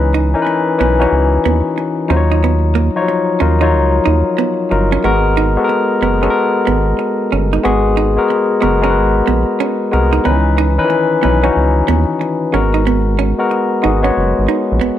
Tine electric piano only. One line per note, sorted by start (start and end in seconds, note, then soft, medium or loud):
0.00 0.31 E3 medium
0.00 0.31 C#4 medium
0.00 0.31 D#4 medium
0.00 0.31 B4 medium
0.34 0.76 E3 medium
0.34 0.77 C#4 medium
0.34 0.77 D#4 medium
0.34 0.40 A#4 medium
0.42 0.79 B4 medium
0.78 0.98 E3 medium
0.78 0.98 C#4 medium
0.78 0.99 D#4 medium
0.78 0.99 B4 medium
0.99 2.09 E3 medium
0.99 2.09 C#4 medium
0.99 2.08 D#4 medium
0.99 2.10 F#4 medium
2.08 2.89 F#3 medium
2.08 2.89 D#4 medium
2.08 2.89 F4 medium
2.08 2.18 C5 medium
2.17 2.93 C#5 medium
2.95 3.00 F3 medium
2.95 3.38 D#4 medium
2.95 3.38 F4 medium
2.95 3.38 C#5 medium
3.02 3.39 F#3 medium
3.40 3.59 F#3 medium
3.40 3.60 D#4 medium
3.40 3.60 F4 medium
3.40 3.60 A#4 medium
3.61 4.65 F#3 medium
3.61 4.66 D#4 medium
3.61 4.66 F4 medium
3.61 4.66 C#5 medium
4.70 5.01 F#3 medium
4.70 5.02 D#4 medium
4.70 5.02 F4 medium
4.70 5.02 A#4 medium
5.04 5.53 G#3 medium
5.04 5.53 B3 medium
5.04 5.53 F#4 medium
5.04 5.54 A#4 medium
5.57 5.99 G#3 medium
5.57 5.99 B3 medium
5.57 5.99 F#4 medium
5.57 5.62 A4 medium
5.64 6.02 A#4 medium
6.02 6.21 G#3 medium
6.02 6.21 B3 medium
6.02 6.21 F#4 medium
6.02 6.22 A#4 medium
6.22 7.42 G#3 medium
6.22 7.42 B3 medium
6.22 7.42 F#4 medium
6.22 6.27 A4 medium
6.30 7.46 A#4 medium
7.64 8.13 G#3 medium
7.64 8.13 B3 medium
7.64 8.14 F#4 medium
7.64 8.14 G#4 loud
8.17 8.59 G#3 medium
8.17 8.60 B3 medium
8.17 8.60 F#4 medium
8.17 8.60 A#4 medium
8.61 8.81 G#3 medium
8.61 8.81 B3 medium
8.61 8.81 F#4 medium
8.61 8.82 A#4 medium
8.82 9.87 G#3 medium
8.82 9.87 B3 medium
8.82 9.87 F#4 medium
8.82 8.88 A#4 medium
8.90 9.91 B4 medium
9.92 10.23 G#3 medium
9.92 10.23 B3 medium
9.92 10.23 F#4 medium
9.92 10.24 A#4 medium
10.24 10.33 D#3 medium
10.24 10.74 C#4 medium
10.24 10.74 D#4 medium
10.24 10.75 B4 loud
10.30 10.77 E3 medium
10.78 10.82 D#3 medium
10.78 11.20 C#4 medium
10.78 11.21 D#4 medium
10.78 11.21 B4 medium
10.84 11.21 E3 medium
11.22 11.42 E3 medium
11.22 11.42 C#4 medium
11.22 11.42 D#4 medium
11.22 11.43 B4 medium
11.43 12.53 E3 medium
11.43 12.53 C#4 medium
11.43 12.53 D#4 medium
11.43 12.52 F#4 medium
12.52 13.32 G#3 medium
12.52 13.32 B3 medium
12.52 13.33 F#4 medium
12.52 13.33 A#4 medium
13.38 13.81 G#3 medium
13.38 13.81 B3 medium
13.38 13.81 F#4 medium
13.38 13.82 A#4 medium
13.82 14.01 G#3 medium
13.82 14.02 B3 medium
13.82 14.02 F#4 medium
13.82 14.03 G#4 medium
14.03 14.99 G#3 medium
14.03 14.99 B3 medium
14.03 14.99 F#4 medium
14.03 14.99 C#5 medium